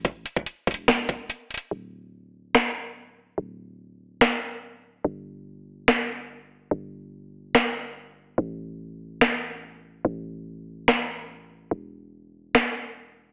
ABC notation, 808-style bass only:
X:1
M:4/4
L:1/8
Q:1/4=144
K:Ephr
V:1 name="808-style bass" clef=bass
A,,, z2 E,,, E,,,2 z2 | D,,,8 | D,,,8 | G,,,8 |
G,,,8 | A,,,8 | A,,,8 | E,,,8 |]